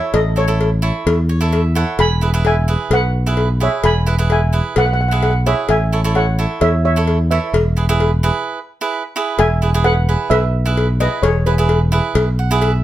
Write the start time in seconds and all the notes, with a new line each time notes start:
Already playing: E4 A4 C#5 E5
0.14 A1 A4 D#5, cowbell
0.36 E4 A4 C#5
0.48 E4 A4 C#5
0.61 cowbell
0.82 E4 A4 C#5
1.06 E2, cowbell
1.29 C#5
1.41 E4 A4 C#5
1.52 E5, cowbell
1.75 E4 A4 C#5 F#5
1.99 E1 G#5 B5, cowbell
2.21 E4 G#4 B4
2.34 E4 G#4 B4
2.45 E5 G#5, cowbell
2.68 E4 G#4 B4
2.90 B1 B4 F#5, cowbell
3.26 E4 G#4 B4
3.37 cowbell
3.60 E4 G#4 B4 C#5 E5
3.84 E1 G#5 B5, cowbell
4.06 E4 G#4 B4
4.18 E4 G#4 B4
4.30 E5 G#5, cowbell
4.53 E4 G#4 B4
4.76 B1 B4 F#5, cowbell
4.86 F#5
4.93 F#5
5.01 F#5
5.08 E4 B4 F#5
5.12 G#4 F#5
5.23 F#5, cowbell
5.30 F#5
5.46 E4 G#4 B4 C#5 E5
5.69 A1 E5 G#5, cowbell
5.93 E4 A4 C#5
6.04 E4 A4 C#5
6.15 C#5 F#5, cowbell
6.39 E4 A4 C#5
6.61 E2 C#5 E5, cowbell
6.85 C#5 E5
6.96 E4 A4 C#5
7.07 cowbell
7.31 E4 A4 B4 C#5 E5
7.53 E1, cowbell
7.77 E4 G#4 B4
7.89 E4 G#4 B4
8.00 cowbell
8.23 E4 G#4 B4
8.81 E4 G#4 B4
9.16 E4 G#4 B4
9.39 E1 E5 G#5, cowbell
9.62 E4 G#4 B4
9.74 E4 G#4 B4
9.84 B4 F#5, cowbell
10.09 E4 G#4 B4
10.30 B1 B4 E5, cowbell
10.65 E4 G#4 B4
10.77 cowbell
11.00 E4 G#4 B4 D#5
11.23 E1 G#4 C#5, cowbell
11.46 E4 G#4 B4
11.58 E4 G#4 B4
11.69 cowbell
11.92 E4 G#4 B4
12.15 B1, cowbell
12.39 F#5
12.51 E4 G#4 B4
12.62 E5, cowbell